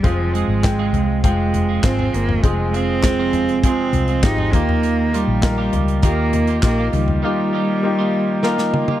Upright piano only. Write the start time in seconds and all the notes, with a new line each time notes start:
0.03 G#3 C4 F4 G#4
0.63 G#3 C4 F4 G5
1.23 G#3 C4 F4 G5
1.83 G#3 C4 F4 G#4
2.43 G#3 C4 F4 G#4
3.03 G#3 C4 F4 G#4
3.64 G#3 C4 F4 G#4
4.23 G#3 C4 F4 G4
4.53 D#3 A#3 D#4 F4 G4
5.42 A#3 D#4 F4 A#4
6.03 A#3 D#4 F4 G4
6.62 A#3 D#4 F4 G4
6.93 D#3
7.23 A#3 D#4 F4 G4
7.83 A#3 D#4 F4 G4
8.43 A#3 D#4 F4 A#4